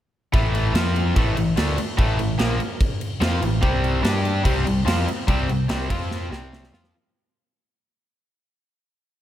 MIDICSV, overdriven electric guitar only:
0, 0, Header, 1, 3, 480
1, 0, Start_track
1, 0, Key_signature, 0, "minor"
1, 0, Tempo, 413508
1, 383, Time_signature, 4, 2, 24, 8
1, 10697, End_track
2, 0, Start_track
2, 0, Title_t, "Overdriven electric guitar"
2, 0, Program_c, 0, 29
2, 381, Note_on_c, 0, 45, 96
2, 392, Note_on_c, 0, 52, 97
2, 399, Note_on_c, 0, 57, 104
2, 851, Note_off_c, 0, 45, 0
2, 856, Note_off_c, 0, 52, 0
2, 860, Note_off_c, 0, 57, 0
2, 862, Note_on_c, 0, 53, 76
2, 873, Note_on_c, 0, 60, 86
2, 880, Note_on_c, 0, 65, 94
2, 1330, Note_off_c, 0, 53, 0
2, 1335, Note_off_c, 0, 60, 0
2, 1337, Note_on_c, 0, 45, 81
2, 1339, Note_off_c, 0, 65, 0
2, 1348, Note_on_c, 0, 52, 92
2, 1356, Note_on_c, 0, 57, 99
2, 1567, Note_off_c, 0, 45, 0
2, 1573, Note_off_c, 0, 52, 0
2, 1577, Note_off_c, 0, 57, 0
2, 1586, Note_on_c, 0, 45, 67
2, 1587, Note_on_c, 0, 52, 69
2, 1770, Note_off_c, 0, 45, 0
2, 1771, Note_off_c, 0, 52, 0
2, 1814, Note_on_c, 0, 50, 92
2, 1825, Note_on_c, 0, 57, 102
2, 1832, Note_on_c, 0, 62, 108
2, 2045, Note_off_c, 0, 50, 0
2, 2050, Note_off_c, 0, 57, 0
2, 2053, Note_off_c, 0, 62, 0
2, 2294, Note_on_c, 0, 45, 98
2, 2301, Note_on_c, 0, 52, 96
2, 2308, Note_on_c, 0, 57, 112
2, 2524, Note_off_c, 0, 45, 0
2, 2527, Note_off_c, 0, 52, 0
2, 2530, Note_off_c, 0, 57, 0
2, 2544, Note_on_c, 0, 45, 64
2, 2545, Note_on_c, 0, 52, 73
2, 2727, Note_off_c, 0, 45, 0
2, 2728, Note_off_c, 0, 52, 0
2, 2764, Note_on_c, 0, 46, 89
2, 2775, Note_on_c, 0, 53, 80
2, 2783, Note_on_c, 0, 58, 86
2, 2997, Note_off_c, 0, 46, 0
2, 3003, Note_off_c, 0, 53, 0
2, 3007, Note_off_c, 0, 58, 0
2, 3721, Note_on_c, 0, 53, 99
2, 3728, Note_on_c, 0, 60, 95
2, 3736, Note_on_c, 0, 65, 106
2, 3955, Note_off_c, 0, 53, 0
2, 3959, Note_off_c, 0, 60, 0
2, 3963, Note_off_c, 0, 65, 0
2, 3967, Note_on_c, 0, 45, 68
2, 3974, Note_on_c, 0, 52, 77
2, 4158, Note_off_c, 0, 45, 0
2, 4161, Note_off_c, 0, 52, 0
2, 4195, Note_on_c, 0, 48, 92
2, 4204, Note_on_c, 0, 55, 94
2, 4210, Note_on_c, 0, 60, 100
2, 4659, Note_off_c, 0, 55, 0
2, 4672, Note_off_c, 0, 48, 0
2, 4673, Note_on_c, 0, 55, 84
2, 4680, Note_off_c, 0, 60, 0
2, 4684, Note_on_c, 0, 62, 85
2, 4688, Note_on_c, 0, 67, 90
2, 5139, Note_off_c, 0, 55, 0
2, 5144, Note_on_c, 0, 48, 95
2, 5153, Note_on_c, 0, 55, 87
2, 5157, Note_off_c, 0, 62, 0
2, 5160, Note_off_c, 0, 67, 0
2, 5161, Note_on_c, 0, 60, 101
2, 5384, Note_off_c, 0, 48, 0
2, 5387, Note_off_c, 0, 55, 0
2, 5397, Note_off_c, 0, 60, 0
2, 5397, Note_on_c, 0, 48, 57
2, 5401, Note_on_c, 0, 55, 67
2, 5594, Note_off_c, 0, 48, 0
2, 5596, Note_off_c, 0, 55, 0
2, 5629, Note_on_c, 0, 53, 88
2, 5640, Note_on_c, 0, 60, 97
2, 5645, Note_on_c, 0, 65, 102
2, 5871, Note_off_c, 0, 53, 0
2, 5877, Note_off_c, 0, 60, 0
2, 5879, Note_off_c, 0, 65, 0
2, 6123, Note_on_c, 0, 48, 85
2, 6134, Note_on_c, 0, 55, 96
2, 6136, Note_on_c, 0, 60, 96
2, 6352, Note_off_c, 0, 48, 0
2, 6356, Note_off_c, 0, 55, 0
2, 6365, Note_off_c, 0, 60, 0
2, 6366, Note_on_c, 0, 48, 63
2, 6370, Note_on_c, 0, 55, 68
2, 6560, Note_off_c, 0, 48, 0
2, 6562, Note_off_c, 0, 55, 0
2, 6597, Note_on_c, 0, 48, 83
2, 6608, Note_on_c, 0, 55, 83
2, 6616, Note_on_c, 0, 60, 100
2, 6832, Note_off_c, 0, 60, 0
2, 6834, Note_off_c, 0, 48, 0
2, 6839, Note_on_c, 0, 53, 88
2, 6841, Note_off_c, 0, 55, 0
2, 6846, Note_on_c, 0, 60, 86
2, 6857, Note_on_c, 0, 65, 90
2, 7319, Note_off_c, 0, 53, 0
2, 7323, Note_off_c, 0, 60, 0
2, 7324, Note_on_c, 0, 48, 94
2, 7328, Note_off_c, 0, 65, 0
2, 7335, Note_on_c, 0, 55, 86
2, 7342, Note_on_c, 0, 60, 110
2, 7802, Note_off_c, 0, 48, 0
2, 7804, Note_off_c, 0, 60, 0
2, 7807, Note_on_c, 0, 53, 97
2, 7808, Note_off_c, 0, 55, 0
2, 7818, Note_on_c, 0, 60, 98
2, 7828, Note_on_c, 0, 65, 109
2, 8044, Note_off_c, 0, 53, 0
2, 8049, Note_off_c, 0, 60, 0
2, 8054, Note_off_c, 0, 65, 0
2, 10697, End_track
3, 0, Start_track
3, 0, Title_t, "Muted overdriven electric guitar strokes"
3, 2059, Note_on_c, 9, 29, 57
3, 2175, Note_off_c, 9, 29, 0
3, 5883, Note_on_c, 9, 29, 57
3, 5999, Note_off_c, 9, 29, 0
3, 10697, End_track
0, 0, End_of_file